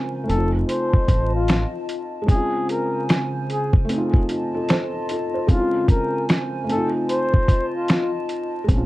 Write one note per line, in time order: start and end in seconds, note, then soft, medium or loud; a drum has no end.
0.00 0.27 C#3 medium
0.00 0.28 G#3 medium
0.00 0.27 C4 medium
0.00 0.30 C#4 medium
0.00 0.31 F4 medium
0.00 0.31 G#4 medium
0.00 0.27 C5 medium
0.00 0.27 G#5 medium
0.24 2.22 A3 medium
0.24 2.26 F4 medium
0.28 0.63 F1 medium
0.28 2.25 C4 medium
0.28 0.52 A4 medium
0.28 2.26 D#5 medium
0.28 2.26 A5 medium
0.28 closed hi-hat medium
0.33 2.27 D#4 medium
0.37 2.29 F4 medium
0.69 1.30 C5 medium
0.69 closed hi-hat medium
0.93 kick medium
1.08 1.64 A1 medium
1.08 kick medium
1.08 closed hi-hat medium
1.35 1.71 F4 medium
1.48 finger snap medium
1.48 snare loud
1.48 closed hi-hat medium
1.89 closed hi-hat medium
2.22 3.82 G#3 medium
2.27 3.87 C#3 medium
2.27 3.84 C4 medium
2.27 2.72 G#4 loud
2.27 3.87 C5 medium
2.27 3.87 G#5 medium
2.27 kick loud
2.27 closed hi-hat medium
2.31 3.87 C#4 medium
2.35 3.89 F4 medium
2.69 3.06 A#4 medium
2.69 closed hi-hat medium
3.09 finger snap medium
3.09 snare loud
3.09 closed hi-hat medium
3.50 3.73 G#4 medium
3.50 closed hi-hat medium
3.73 kick medium
3.85 5.44 A3 medium
3.89 5.46 C4 medium
3.89 5.47 F4 medium
3.89 5.48 D#5 medium
3.89 5.47 A5 medium
3.89 closed hi-hat medium
3.93 5.48 D#4 medium
3.98 4.30 F4 medium
4.14 kick medium
4.29 4.54 F4 medium
4.29 closed hi-hat medium
4.54 4.69 F4 medium
4.54 4.68 A4 medium
4.69 5.08 A4 medium
4.69 5.08 C5 medium
4.69 finger snap medium
4.69 snare loud
4.69 closed hi-hat medium
5.09 5.34 F4 medium
5.09 5.33 A4 medium
5.09 closed hi-hat medium
5.34 5.72 A4 soft
5.34 5.72 C5 medium
5.47 6.68 C#3 medium
5.47 6.68 G#3 medium
5.47 6.67 C4 medium
5.47 6.70 C#4 medium
5.47 5.85 F4 medium
5.47 6.67 C5 medium
5.47 6.67 G#5 medium
5.47 kick loud
5.47 closed hi-hat medium
5.53 5.59 E4 medium
5.59 6.74 F4 medium
5.88 6.25 A#4 medium
5.88 kick medium
5.88 closed hi-hat medium
6.29 finger snap medium
6.29 snare medium
6.29 closed hi-hat medium
6.64 8.62 A3 medium
6.68 8.65 C4 medium
6.68 8.67 F4 medium
6.68 6.92 A4 medium
6.68 8.67 D#5 medium
6.68 8.67 A5 loud
6.68 closed hi-hat medium
6.72 8.67 D#4 medium
6.77 8.69 F4 medium
7.09 7.71 C5 medium
7.09 closed hi-hat medium
7.34 kick medium
7.48 kick medium
7.48 closed hi-hat medium
7.75 8.11 F4 medium
7.88 finger snap medium
7.88 snare loud
7.88 closed hi-hat medium
8.29 closed hi-hat medium
8.64 8.86 G#3 medium
8.68 8.86 A#1 loud
8.68 8.86 C#3 medium
8.68 8.86 C4 medium
8.68 8.86 C5 medium
8.68 8.86 G#5 medium
8.68 kick loud
8.68 closed hi-hat medium
8.73 8.86 C#4 medium
8.77 8.86 F4 medium